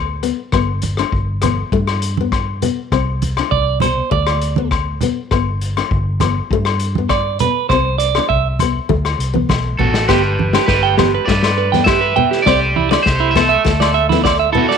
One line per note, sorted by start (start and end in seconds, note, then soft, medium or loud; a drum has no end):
0.00 0.31 D2 medium
0.23 0.39 B3 medium
0.23 closed hi-hat soft
0.52 1.02 G1 medium
0.52 0.69 B3 medium
0.52 kick medium
0.52 cross-stick medium
0.52 low agogo medium
0.82 closed hi-hat medium
0.82 high conga medium
0.97 1.15 D4 medium
0.97 cross-stick medium
0.97 low agogo medium
1.12 1.61 G1 loud
1.12 kick medium
1.42 1.59 B3 medium
1.42 cross-stick medium
1.42 closed hi-hat soft
1.42 high conga medium
1.42 low conga medium
1.42 low agogo medium
1.72 2.69 G2 medium
1.72 1.89 A3 medium
1.72 kick medium
1.87 cross-stick medium
1.87 low agogo medium
2.02 closed hi-hat medium
2.17 2.36 B3 medium
2.17 high conga medium
2.32 kick medium
2.32 cross-stick medium
2.32 low agogo medium
2.62 2.78 B3 medium
2.62 closed hi-hat soft
2.62 low conga medium
2.92 3.40 C2 loud
2.92 3.08 C4 medium
2.92 kick medium
2.92 cross-stick medium
2.92 low agogo medium
3.22 closed hi-hat soft
3.22 high conga medium
3.37 3.54 D4 medium
3.37 cross-stick medium
3.37 low agogo medium
3.51 4.00 C2 medium
3.51 3.81 D5 medium
3.51 kick medium
3.80 3.99 B2 medium
3.80 4.11 C5 medium
3.80 closed hi-hat soft
3.80 high conga medium
3.80 low conga medium
3.80 low agogo medium
4.11 5.08 D2 loud
4.11 4.68 D5 medium
4.11 muted nylon-string guitar stroke medium
4.11 kick medium
4.27 cross-stick medium
4.27 low agogo medium
4.42 closed hi-hat soft
4.56 4.73 B3 medium
4.56 high conga medium
4.71 kick medium
4.71 cross-stick medium
4.71 low agogo medium
5.01 5.18 B3 medium
5.01 closed hi-hat soft
5.01 low conga medium
5.31 5.80 G1 loud
5.31 5.48 B3 medium
5.31 kick medium
5.31 cross-stick medium
5.31 low agogo medium
5.61 closed hi-hat soft
5.77 5.93 D4 medium
5.77 cross-stick medium
5.77 low agogo medium
5.91 6.40 G1 loud
5.91 kick medium
6.20 6.38 B3 medium
6.20 cross-stick medium
6.20 closed hi-hat soft
6.20 high conga medium
6.20 low conga medium
6.20 low agogo medium
6.50 7.47 G2 loud
6.50 6.68 A3 loud
6.50 kick medium
6.65 cross-stick medium
6.65 low agogo medium
6.79 closed hi-hat medium
6.95 7.13 B3 medium
6.95 high conga medium
7.09 7.39 D5 medium
7.09 kick medium
7.09 cross-stick medium
7.09 low agogo medium
7.39 7.57 B3 medium
7.39 7.69 B4 medium
7.39 closed hi-hat medium
7.39 low conga medium
7.69 8.18 C2 loud
7.69 7.88 C4 medium
7.69 7.98 C5 medium
7.69 kick medium
7.69 cross-stick medium
7.69 low agogo medium
7.98 8.28 D5 medium
7.98 closed hi-hat medium
8.15 8.33 D4 medium
8.15 cross-stick medium
8.15 low agogo medium
8.29 8.78 C2 medium
8.29 8.47 E5 medium
8.29 kick medium
8.59 8.77 B3 medium
8.59 closed hi-hat medium
8.59 high conga medium
8.59 low conga medium
8.59 low agogo medium
8.89 9.14 D2 medium
8.89 9.05 A3 medium
8.89 kick medium
8.89 high conga medium
9.05 cross-stick medium
9.05 low agogo medium
9.19 9.46 C2 medium
9.19 closed hi-hat medium
9.34 9.50 B3 medium
9.34 high conga medium
9.49 9.76 B1 medium
9.49 kick medium
9.49 snare medium
9.49 high conga medium
9.49 low agogo medium
9.79 10.06 A1 medium
9.79 9.95 B3 medium
9.79 10.08 F#4 medium
9.79 10.08 A4 loud
9.79 kick medium
9.79 low conga medium
9.94 snare medium
10.08 10.57 G1 loud
10.08 10.24 B3 medium
10.08 10.21 G4 medium
10.08 10.65 G4 medium
10.08 10.64 B4 loud
10.08 kick loud
10.08 snare medium
10.08 low agogo medium
10.39 high conga medium
10.53 10.70 D4 medium
10.53 10.66 G4 medium
10.53 snare medium
10.53 low agogo medium
10.66 11.17 G1 loud
10.66 11.24 G4 medium
10.66 11.27 B4 medium
10.66 10.81 B4 medium
10.66 kick loud
10.66 snare medium
10.83 10.95 G5 medium
10.98 11.14 B3 medium
10.98 11.10 G4 medium
10.98 snare medium
10.98 high conga medium
10.98 low conga medium
10.98 low agogo medium
11.15 11.26 B4 medium
11.26 12.24 G2 loud
11.26 11.45 A3 loud
11.26 11.84 B4 medium
11.26 11.84 D5 medium
11.26 kick loud
11.26 snare medium
11.43 snare medium
11.43 low agogo medium
11.58 11.70 B4 medium
11.72 11.90 B3 medium
11.72 11.84 G5 medium
11.72 snare soft
11.72 high conga medium
11.84 12.00 G4 medium
11.84 12.44 B4 medium
11.84 12.42 E5 loud
11.84 kick loud
11.84 snare medium
11.84 low agogo medium
12.01 12.13 B4 medium
12.16 12.32 B3 medium
12.16 12.29 G5 medium
12.16 low conga medium
12.31 12.43 G4 medium
12.31 snare soft
12.42 13.02 D5 loud
12.42 snare medium
12.46 12.95 C2 loud
12.46 12.63 C4 loud
12.46 13.03 G4 loud
12.46 12.59 D5 loud
12.46 kick medium
12.46 low agogo medium
12.76 12.89 E4 medium
12.76 high conga medium
12.91 13.07 D4 medium
12.91 13.03 D5 medium
12.91 snare medium
12.91 low agogo medium
13.03 13.31 C5 loud
13.03 kick medium
13.03 snare medium
13.07 13.55 C2 loud
13.07 13.35 G4 medium
13.20 13.33 E4 medium
13.31 14.49 E5 loud
13.35 13.51 B3 medium
13.35 14.52 A4 medium
13.35 snare medium
13.35 high conga medium
13.35 low conga medium
13.35 low agogo medium
13.49 13.62 E5 medium
13.64 14.63 D2 loud
13.64 13.81 A3 loud
13.64 kick loud
13.64 snare medium
13.80 13.93 D5 medium
13.80 snare medium
13.80 low agogo medium
13.94 14.07 E5 medium
14.09 14.28 B3 medium
14.09 14.22 E4 medium
14.09 snare soft
14.09 high conga medium
14.24 14.37 D5 medium
14.24 kick loud
14.24 snare medium
14.24 low agogo medium
14.39 14.52 E5 medium
14.52 14.71 B3 medium
14.52 14.66 E4 medium
14.52 14.78 A4 loud
14.52 low conga medium
14.57 14.78 F#4 medium
14.69 14.78 D5 medium
14.69 snare soft